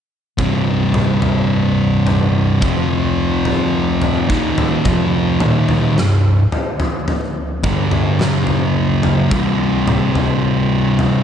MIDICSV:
0, 0, Header, 1, 3, 480
1, 0, Start_track
1, 0, Key_signature, -3, "minor"
1, 0, Tempo, 1117318
1, 166, Time_signature, 4, 2, 24, 8
1, 4825, End_track
2, 0, Start_track
2, 0, Title_t, "Distorted electric guitar"
2, 0, Program_c, 0, 30
2, 162, Note_on_c, 0, 36, 82
2, 166, Note_on_c, 0, 43, 96
2, 167, Note_on_c, 0, 48, 80
2, 1117, Note_off_c, 0, 36, 0
2, 1118, Note_off_c, 0, 43, 0
2, 1119, Note_off_c, 0, 48, 0
2, 1124, Note_on_c, 0, 41, 86
2, 1126, Note_on_c, 0, 48, 97
2, 1130, Note_on_c, 0, 53, 110
2, 1838, Note_off_c, 0, 41, 0
2, 1838, Note_off_c, 0, 48, 0
2, 1841, Note_off_c, 0, 53, 0
2, 1841, Note_on_c, 0, 39, 90
2, 1845, Note_on_c, 0, 46, 87
2, 1847, Note_on_c, 0, 51, 100
2, 2076, Note_off_c, 0, 39, 0
2, 2078, Note_off_c, 0, 46, 0
2, 2079, Note_off_c, 0, 51, 0
2, 2084, Note_on_c, 0, 41, 91
2, 2084, Note_on_c, 0, 48, 92
2, 2088, Note_on_c, 0, 53, 100
2, 2317, Note_off_c, 0, 41, 0
2, 2317, Note_off_c, 0, 48, 0
2, 2319, Note_off_c, 0, 53, 0
2, 2320, Note_on_c, 0, 39, 82
2, 2324, Note_on_c, 0, 46, 91
2, 2328, Note_on_c, 0, 51, 99
2, 2556, Note_off_c, 0, 39, 0
2, 2558, Note_off_c, 0, 46, 0
2, 2559, Note_off_c, 0, 51, 0
2, 2563, Note_on_c, 0, 36, 63
2, 2565, Note_on_c, 0, 43, 64
2, 2756, Note_off_c, 0, 36, 0
2, 2757, Note_off_c, 0, 43, 0
2, 3279, Note_on_c, 0, 43, 85
2, 3283, Note_on_c, 0, 50, 102
2, 3286, Note_on_c, 0, 55, 83
2, 3519, Note_off_c, 0, 43, 0
2, 3519, Note_on_c, 0, 42, 100
2, 3524, Note_off_c, 0, 50, 0
2, 3524, Note_on_c, 0, 49, 90
2, 3525, Note_off_c, 0, 55, 0
2, 3525, Note_on_c, 0, 54, 93
2, 3994, Note_off_c, 0, 42, 0
2, 3996, Note_on_c, 0, 36, 100
2, 3997, Note_off_c, 0, 49, 0
2, 3997, Note_off_c, 0, 54, 0
2, 4002, Note_on_c, 0, 43, 78
2, 4004, Note_on_c, 0, 48, 90
2, 4825, Note_off_c, 0, 36, 0
2, 4825, Note_off_c, 0, 43, 0
2, 4825, Note_off_c, 0, 48, 0
2, 4825, End_track
3, 0, Start_track
3, 0, Title_t, "Drums"
3, 165, Note_on_c, 9, 43, 91
3, 166, Note_on_c, 9, 36, 97
3, 208, Note_off_c, 9, 43, 0
3, 209, Note_off_c, 9, 36, 0
3, 405, Note_on_c, 9, 43, 81
3, 405, Note_on_c, 9, 47, 80
3, 448, Note_off_c, 9, 43, 0
3, 448, Note_off_c, 9, 47, 0
3, 524, Note_on_c, 9, 43, 83
3, 567, Note_off_c, 9, 43, 0
3, 888, Note_on_c, 9, 43, 83
3, 931, Note_off_c, 9, 43, 0
3, 1125, Note_on_c, 9, 43, 83
3, 1127, Note_on_c, 9, 36, 102
3, 1168, Note_off_c, 9, 43, 0
3, 1170, Note_off_c, 9, 36, 0
3, 1483, Note_on_c, 9, 43, 74
3, 1526, Note_off_c, 9, 43, 0
3, 1725, Note_on_c, 9, 43, 82
3, 1768, Note_off_c, 9, 43, 0
3, 1846, Note_on_c, 9, 36, 93
3, 1889, Note_off_c, 9, 36, 0
3, 1967, Note_on_c, 9, 43, 78
3, 1967, Note_on_c, 9, 47, 77
3, 2010, Note_off_c, 9, 43, 0
3, 2010, Note_off_c, 9, 47, 0
3, 2084, Note_on_c, 9, 43, 84
3, 2085, Note_on_c, 9, 36, 93
3, 2127, Note_off_c, 9, 43, 0
3, 2128, Note_off_c, 9, 36, 0
3, 2322, Note_on_c, 9, 43, 82
3, 2322, Note_on_c, 9, 47, 78
3, 2365, Note_off_c, 9, 43, 0
3, 2365, Note_off_c, 9, 47, 0
3, 2442, Note_on_c, 9, 43, 81
3, 2485, Note_off_c, 9, 43, 0
3, 2568, Note_on_c, 9, 38, 72
3, 2611, Note_off_c, 9, 38, 0
3, 2803, Note_on_c, 9, 43, 79
3, 2845, Note_off_c, 9, 43, 0
3, 2920, Note_on_c, 9, 43, 80
3, 2963, Note_off_c, 9, 43, 0
3, 3040, Note_on_c, 9, 43, 80
3, 3083, Note_off_c, 9, 43, 0
3, 3280, Note_on_c, 9, 43, 77
3, 3282, Note_on_c, 9, 36, 99
3, 3323, Note_off_c, 9, 43, 0
3, 3325, Note_off_c, 9, 36, 0
3, 3400, Note_on_c, 9, 43, 87
3, 3443, Note_off_c, 9, 43, 0
3, 3520, Note_on_c, 9, 47, 63
3, 3527, Note_on_c, 9, 38, 69
3, 3563, Note_off_c, 9, 47, 0
3, 3570, Note_off_c, 9, 38, 0
3, 3638, Note_on_c, 9, 43, 79
3, 3681, Note_off_c, 9, 43, 0
3, 3881, Note_on_c, 9, 43, 81
3, 3923, Note_off_c, 9, 43, 0
3, 4001, Note_on_c, 9, 36, 100
3, 4002, Note_on_c, 9, 43, 83
3, 4044, Note_off_c, 9, 36, 0
3, 4045, Note_off_c, 9, 43, 0
3, 4242, Note_on_c, 9, 43, 81
3, 4242, Note_on_c, 9, 47, 80
3, 4285, Note_off_c, 9, 43, 0
3, 4285, Note_off_c, 9, 47, 0
3, 4362, Note_on_c, 9, 43, 86
3, 4405, Note_off_c, 9, 43, 0
3, 4721, Note_on_c, 9, 43, 82
3, 4764, Note_off_c, 9, 43, 0
3, 4825, End_track
0, 0, End_of_file